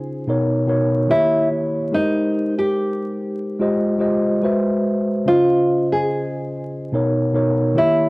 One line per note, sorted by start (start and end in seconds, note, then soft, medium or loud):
0.00 0.27 C#3 medium
0.00 0.28 C#4 medium
0.00 0.27 D#4 medium
0.00 0.27 F4 medium
0.00 0.46 G#4 medium
0.00 0.28 C5 medium
0.27 0.56 B2 medium
0.27 0.56 B3 medium
0.27 0.57 D#4 medium
0.27 0.57 A#4 medium
0.27 0.57 C#5 medium
0.67 1.09 B2 medium
0.67 1.09 B3 medium
0.67 1.09 D#4 medium
0.67 1.10 A#4 medium
0.67 1.09 C#5 medium
1.08 1.77 D#3 medium
1.08 1.77 A#3 medium
1.08 1.77 E4 medium
1.08 1.48 E4 medium
1.08 1.78 G4 medium
1.08 1.78 C#5 medium
1.91 3.06 G#3 medium
1.91 3.06 D#4 medium
1.91 2.54 D#4 medium
1.91 3.07 G4 medium
1.91 3.07 A#4 medium
1.91 3.07 C5 medium
2.58 3.79 G4 medium
3.59 3.89 G#3 medium
3.59 3.89 F4 medium
3.59 3.89 G4 medium
3.59 3.90 C5 medium
3.59 3.90 D#5 medium
3.98 4.41 G#3 medium
3.98 4.41 F4 medium
3.98 4.42 G4 medium
3.98 4.42 C5 medium
3.98 4.43 D#5 medium
4.42 5.10 G#3 medium
4.42 5.11 F#4 medium
4.42 5.11 B4 medium
4.42 5.12 C5 medium
4.42 5.12 E5 medium
5.25 6.40 C#3 medium
5.25 6.40 C#4 medium
5.25 5.33 D#4 soft
5.25 5.87 F4 medium
5.25 6.41 C5 medium
5.25 6.41 D#5 medium
5.33 6.44 F4 medium
5.92 7.12 G#4 medium
6.92 7.22 B2 medium
6.92 7.22 B3 medium
6.92 7.23 D#4 medium
6.92 7.23 A#4 medium
6.92 7.23 C#5 medium
7.33 7.75 B2 medium
7.33 7.76 B3 medium
7.33 7.76 D#4 medium
7.33 7.76 A#4 medium
7.33 7.76 C#5 medium
7.74 8.09 D#3 medium
7.74 8.09 A#3 medium
7.74 8.09 E4 medium
7.74 8.09 G4 medium
7.74 8.09 C#5 medium